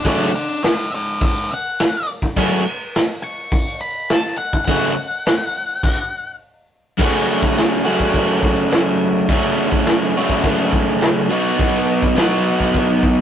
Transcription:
0.05 overdriven electric guitar F#2 C#3 F#3 A3 C#4 F#4, lead electric guitar A4 F#5, kick, open hi-hat
0.35 lead electric guitar A4 F#5
0.63 lead electric guitar C#5 E5, snare, open hi-hat
0.95 lead electric guitar C#5 E5
1.21 lead electric guitar C#5 E5, kick, open hi-hat
1.54 lead electric guitar F#5
1.79 snare, open hi-hat
2.22 kick
2.37 overdriven electric guitar F#2 C#3 F#3 A3 C#4 F#4, kick, crash
2.95 snare, open hi-hat
3.24 lead electric guitar C#6
3.52 kick, open hi-hat
3.81 lead electric guitar B5
4.09 lead electric guitar A5, snare, open hi-hat
4.26 snare
4.38 lead electric guitar F#5
4.53 kick
4.66 overdriven electric guitar F#2 C#3 F#3 A3, lead electric guitar F#5, kick, open hi-hat
4.70 overdriven electric guitar C#4 F#4
5.25 snare, open hi-hat
5.83 kick, crash
6.98 overdriven electric guitar F#2 C#3 F#3 A3 C#4, kick, crash
7.02 overdriven electric guitar F#4
7.42 kick
7.57 snare, crash
7.84 overdriven electric guitar F#2 C#3 F#3 A3 C#4 F#4
8.00 kick
8.14 kick, crash
8.43 kick
8.71 snare, crash
9.29 overdriven electric guitar F#2 C#3 F#3 A3 C#4 F#4, kick, crash
9.72 kick
9.86 snare, crash
10.17 overdriven electric guitar F#2 C#3 F#3 A3 C#4 F#4
10.29 kick
10.44 kick, crash
10.73 kick
11.01 snare, crash
11.29 overdriven electric guitar B2 F#3 B3 D#4 F#4
11.59 kick, crash
12.02 kick
12.16 overdriven electric guitar B2 F#3 B3 D#4 F#4, snare, crash
12.60 kick
12.74 kick, crash
13.03 kick

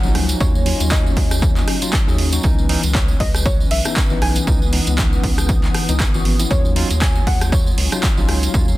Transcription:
Already playing: ambient pad F#3 C#4 D#5, analog synth pad A#3 D#4 C#5, synth pluck F#5
0.03 analog synth bass A#1, tine electric piano F3 F#3 C#4 D#4, tambourine
0.15 analog synth bass C#2, cross-stick, open hi-hat
0.29 closed hi-hat, tambourine
0.40 analog synth bass D#2, tine electric piano F#3 C#4 D#4 F4, synth pluck C#5, kick, closed hi-hat, tambourine
0.55 tambourine
0.66 tine electric piano F#3 C#4 D#4 F4, open hi-hat
0.80 analog synth bass D#2, closed hi-hat, tambourine
0.90 synth pluck D#5, kick, clap, closed hi-hat, tambourine
1.06 tambourine
1.17 analog synth bass D#2, kick, open hi-hat
1.31 cross-stick, closed hi-hat, tambourine
1.42 kick, closed hi-hat, tambourine
1.56 clap, tambourine
1.68 cross-stick, open hi-hat
1.82 tine electric piano F#3 C#4 D#4 F4, closed hi-hat, tambourine
1.93 kick, cross-stick, clap, closed hi-hat, tambourine
2.07 analog synth bass D#2, tine electric piano F#3 C#4 D#4 G#4, tambourine
2.18 open hi-hat
2.32 tine electric piano F#3 C#4 D#4 F#4, closed hi-hat, tambourine
2.43 analog synth bass C#2, analog synth pad E3 C#4 B4, tine electric piano E3 B3 C#4 D#4, ambient pad B3, kick, closed hi-hat, tambourine
2.59 tambourine
2.69 tine electric piano E3 B3 C#4 D#4, open hi-hat
2.83 analog synth bass C#2, closed hi-hat, tambourine
2.93 ambient pad E3, synth pluck C#5, kick, clap, closed hi-hat, tambourine
3.08 tambourine
3.20 analog synth bass C#2, synth pluck D#5, ambient pad D#6, kick, open hi-hat
3.35 cross-stick, closed hi-hat, tambourine
3.46 synth pluck C#5, kick, closed hi-hat, tambourine
3.60 tambourine
3.71 analog synth bass B1, synth pluck E5, open hi-hat
3.85 tine electric piano E3 B3 C#4 D#4, cross-stick, closed hi-hat, tambourine
3.96 kick, clap, closed hi-hat, tambourine
4.10 analog synth bass G#1, tine electric piano E3 B3 C#4 D#4, tambourine
4.22 analog synth bass B1, synth pluck G#5, cross-stick, open hi-hat
4.36 closed hi-hat, tambourine
4.47 analog synth bass C#2, tine electric piano E3 B3 C#4 D#4, kick, closed hi-hat, tambourine
4.62 tambourine
4.73 tine electric piano E3 B3 C#4 D#4, open hi-hat
4.87 analog synth bass C#2, closed hi-hat, tambourine
4.98 kick, clap, closed hi-hat, tambourine
5.13 tambourine
5.23 analog synth bass C#2, kick, open hi-hat
5.38 cross-stick, closed hi-hat, tambourine
5.49 kick, closed hi-hat, tambourine
5.64 clap, tambourine
5.74 cross-stick, open hi-hat
5.89 analog synth bass C#2, tine electric piano E3 B3 C#4 D#4, closed hi-hat, tambourine
6.00 kick, cross-stick, clap, closed hi-hat, tambourine
6.14 analog synth bass G#1, tine electric piano E3 B3 C#4 F#4, tambourine
6.25 open hi-hat
6.39 tine electric piano E3 B3 C#4 E4, closed hi-hat, tambourine
6.51 analog synth bass D#2, tine electric piano F#3 C#4 D#4 F4, analog synth pad F#3 F4 C#5, ambient pad C#4, synth pluck C#5, kick, closed hi-hat, tambourine
6.65 tambourine
6.76 tine electric piano F#3 C#4 D#4 F4, open hi-hat
6.91 analog synth bass D#2, closed hi-hat, tambourine
6.95 ambient pad F#3
7.01 synth pluck G#5, kick, clap, closed hi-hat, tambourine
7.16 tambourine
7.27 analog synth bass D#2, synth pluck F#5, kick, open hi-hat
7.41 ambient pad F5, cross-stick, closed hi-hat, tambourine
7.52 synth pluck C#5, kick, closed hi-hat, tambourine
7.66 tambourine
7.78 analog synth bass C#2, open hi-hat
7.92 tine electric piano F#3 C#4 D#4 F4, cross-stick, closed hi-hat, tambourine
8.03 kick, clap, closed hi-hat, tambourine
8.18 analog synth bass A#1, tine electric piano F#3 C#4 D#4 F4, tambourine
8.29 analog synth bass C#2, cross-stick, open hi-hat
8.43 closed hi-hat, tambourine
8.54 analog synth bass D#2, tine electric piano F#3 C#4 D#4 F4, analog synth pad D#4, kick, closed hi-hat, tambourine
8.68 tambourine

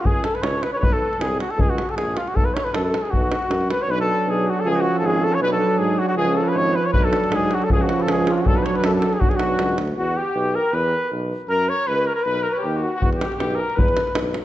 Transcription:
0.01 tuba C#2, cornet F4 F#4, trumpet F#4
0.05 trumpet G#4, cornet G#4, davul low
0.23 trumpet A4, cornet A4, davul high
0.35 cornet B4, trumpet B4, davul high
0.42 tuba C#2, cornet C#5, trumpet C#5, davul high
0.63 cornet B4, trumpet B4, davul high
0.73 cornet B4 C#5, trumpet C#5
0.77 tuba B1, cornet B4 C#5, trumpet C#5
0.82 trumpet B4, davul low
0.92 trumpet A4, cornet A4
1.13 davul high
1.19 tuba C2, cornet G#4, trumpet G#4, davul high
1.40 trumpet F#4, cornet F#4, davul high
1.50 trumpet A4, cornet A4, davul high
1.57 tuba C#2, trumpet G#4, cornet G#4, davul low
1.70 trumpet F#4, cornet F#4
1.78 davul high
1.89 trumpet A4, cornet A4, davul high
1.96 tuba A#1, cornet G#4, trumpet G#4, davul high
2.14 trumpet F4, cornet F4, davul high
2.27 trumpet F#4, cornet F#4, davul high
2.35 tuba B1, trumpet A4, cornet A4, davul low
2.45 cornet B4, trumpet B4
2.54 trumpet C#5, cornet C#5, davul high
2.65 cornet B4, trumpet B4, davul high
2.73 tuba F#2, cornet A4, trumpet A4, davul high
2.84 cornet A4, trumpet A4
2.94 davul high
3.02 cornet G#4, trumpet G#4, davul high
3.11 tuba B1, cornet F#4, trumpet F#4, davul low
3.32 davul high
3.42 davul high
3.50 tuba F#2, davul high
3.61 davul high
3.70 cornet B4, trumpet B4, davul high
3.82 cornet C#5, trumpet C#5
3.88 tuba B1, euphonium F#3, trombone D4, cornet B4, trumpet B4
4.01 cornet A4, trumpet A4
4.26 tuba B1, trumpet G#4, cornet G#4
4.47 trumpet F#4, cornet F#4
4.57 trumpet A4, cornet A4
4.64 tuba C#2, euphonium F3, trombone C#4, trumpet G#4
4.71 cornet G#4
4.76 trumpet F#4
4.81 cornet F#4
4.94 trumpet A4
4.99 tuba G#1, trumpet G#4, cornet A4
5.06 cornet G#4
5.21 trumpet A4, cornet A4
5.33 trumpet C#5, cornet C#5
5.39 tuba B1, euphonium F#3, trombone D4, trumpet B4, cornet B4
5.52 cornet A4, trumpet A4
5.78 tuba G#2, trumpet G#4, cornet G#4
5.99 cornet F#4, trumpet F#4
6.09 cornet F#4, trumpet F#4
6.16 tuba C#2, euphonium F3, trombone C#4, trumpet G#4, cornet G#4
6.34 trumpet A4, cornet A4
6.44 trumpet B4
6.49 cornet B4
6.53 tuba G#1, trumpet C#5
6.57 cornet C#5
6.73 trumpet B4, cornet B4
6.83 trumpet C#5, cornet C#5
6.92 tuba B1, euphonium F#3, trombone D4, trumpet B4, cornet B4, davul low
7.04 trumpet A4, cornet A4
7.13 davul high
7.24 davul high
7.31 tuba G#2, trumpet G#4, davul high
7.35 cornet G#4
7.51 trumpet F#4, cornet F#4, davul high
7.61 trumpet A4, cornet A4, davul high
7.68 tuba C#2, euphonium F3, trombone C#4, davul low
7.72 trumpet G#4, cornet G#4
7.81 trumpet F#4, cornet F#4
7.89 davul high
7.98 trumpet A4 B4, cornet B4, davul high
8.02 cornet A4
8.07 tuba C#2, trumpet G#4, cornet G#4, davul high
8.27 trumpet D4 F4, cornet F4, davul high
8.32 cornet D4 F4, trumpet F4
8.37 trumpet F#4, davul high
8.41 tuba B1, euphonium F#3, cornet F#4
8.45 trombone D4, trumpet A4, cornet A4, davul low
8.56 trumpet B4, cornet B4
8.64 trumpet C#5, cornet C#5, davul high
8.73 trumpet B4, cornet B4, davul high
8.83 tuba F#2, trumpet A4, cornet A4, davul high
8.94 trumpet A4, cornet A4
9.02 davul high
9.13 trumpet G#4, cornet G#4, davul high
9.20 tuba B1, euphonium F#3, trombone D4, cornet F#4, trumpet F#4, davul low
9.29 trumpet G#4, cornet G#4, davul high
9.36 cornet F#4, trumpet F#4, davul high
9.40 tuba B1
9.59 tuba C#2, davul high
9.69 davul high
9.78 tuba D2, davul high
9.87 davul high
9.97 tuba E2, trumpet F#4, cornet F#4
10.17 trumpet G4, cornet G4
10.35 tuba B1
10.55 trumpet A#4, cornet A#4
10.72 tuba E2, trumpet B4, cornet B4
11.11 tuba B1
11.49 tuba F#2, trumpet A#4, cornet A#4
11.69 trumpet C#5, cornet C#5
11.87 tuba C#2, cornet B4, trumpet B4
12.06 trumpet A#4, cornet A#4
12.15 trumpet A#4, cornet A#4
12.23 tuba B1, trumpet B4, cornet B4
12.43 trumpet A#4, cornet A#4
12.50 trumpet B4 C#5, cornet B4
12.56 trumpet G4, cornet C#5
12.63 tuba D#2, cornet G4
12.76 trumpet F#4
12.83 cornet F#4
12.96 trumpet F#4
13.01 tuba E2, cornet F#4, davul low
13.13 trumpet G4, davul high
13.21 cornet G4, davul high
13.32 davul high
13.37 tuba B1, trumpet G4, davul high
13.41 cornet G4
13.50 davul high
13.55 trumpet A#4
13.60 cornet A#4
13.70 davul high
13.76 tuba E2, trumpet B4, cornet B4, davul low
13.88 davul high
13.97 davul high
14.07 davul high
14.15 tuba B1, davul high
14.34 davul high

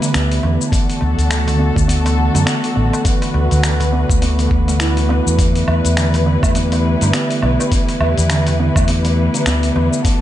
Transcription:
Already playing: string section D3 G3 E4 B4
0.02 kalimba D3, open hi-hat, shaker
0.14 fretless electric bass D2, kalimba B3, finger snap, open hi-hat, shaker
0.32 open hi-hat, shaker
0.43 fretless electric bass E2, kalimba B3, darbuka tek
0.61 shaker
0.72 kalimba E3, string section A3 F#4 A4, kick, open hi-hat, shaker
0.90 open hi-hat, shaker
1.01 fretless electric bass D2, darbuka ka
1.18 fretless electric bass D2, open hi-hat, shaker
1.30 kalimba D3, finger snap, open hi-hat, darbuka ka, shaker
1.47 open hi-hat, darbuka tek, darbuka dum, shaker
1.59 kalimba B3
1.76 fretless electric bass D2, kalimba A3, kick, shaker
1.88 kalimba B3, open hi-hat, shaker
2.05 kalimba E3, open hi-hat, darbuka tek, shaker
2.18 darbuka ka
2.34 fretless electric bass F#2, kalimba D3, open hi-hat, darbuka tek, shaker
2.46 kalimba B3, finger snap, open hi-hat, shaker
2.64 open hi-hat, shaker
2.76 fretless electric bass A1, kalimba B3
2.93 darbuka ka, darbuka tek, shaker
3.05 kalimba E3, string section B4, kick, open hi-hat, shaker
3.22 open hi-hat, darbuka tek, shaker
3.34 fretless electric bass D2, darbuka ka
3.51 fretless electric bass D2, open hi-hat, darbuka dum, shaker
3.63 kalimba D3, finger snap, open hi-hat, darbuka ka, shaker
3.80 open hi-hat, darbuka tek, darbuka dum, shaker
3.93 kalimba B3
4.09 fretless electric bass D2, kalimba A3, kick, shaker
4.22 kalimba B3, open hi-hat, shaker
4.39 kalimba E3, open hi-hat, shaker
4.51 fretless electric bass D2, kick
4.68 kalimba A3, open hi-hat, shaker
4.80 kalimba E4, finger snap, open hi-hat, shaker
4.97 kalimba E3, open hi-hat, shaker
5.09 kalimba B3, darbuka tek
5.26 fretless electric bass E2, shaker
5.39 kalimba E3, string section G3 E4, kick, open hi-hat, shaker
5.56 open hi-hat, shaker
5.68 fretless electric bass E2, darbuka ka, low woodblock
5.85 fretless electric bass E2, open hi-hat, shaker
5.97 kalimba D3, finger snap, open hi-hat, darbuka ka, shaker
6.14 open hi-hat, darbuka tek, darbuka dum, shaker
6.26 kalimba B3
6.43 fretless electric bass E2, kalimba A3, kick, low woodblock, shaker
6.55 kalimba B3, open hi-hat, shaker
6.72 kalimba E3, open hi-hat, darbuka tek, shaker
6.85 darbuka ka
7.01 fretless electric bass G2, kalimba D3, open hi-hat, darbuka tek, shaker
7.13 kalimba B3, finger snap, open hi-hat, shaker
7.30 open hi-hat, shaker
7.42 fretless electric bass B1, kalimba B3, low woodblock
7.60 darbuka ka, darbuka tek, shaker
7.72 kalimba E3, kick, open hi-hat, shaker
7.89 open hi-hat, darbuka tek, shaker
8.00 fretless electric bass E2, darbuka ka, low woodblock
8.17 fretless electric bass E2, open hi-hat, darbuka dum, shaker
8.30 kalimba D3, finger snap, open hi-hat, darbuka ka, shaker
8.47 open hi-hat, darbuka tek, darbuka dum, shaker
8.59 kalimba B3
8.76 fretless electric bass E2, kalimba A3, kick, low woodblock, shaker
8.88 kalimba B3, open hi-hat, shaker
9.05 kalimba E3, open hi-hat, shaker
9.34 kalimba D3, open hi-hat, shaker
9.46 fretless electric bass D2, kalimba B3, finger snap, open hi-hat, shaker
9.63 open hi-hat, shaker
9.75 fretless electric bass E2, kalimba B3, darbuka tek
9.93 shaker
10.05 string section D3 A3 F#4 A4, kalimba E3, kick, open hi-hat, shaker

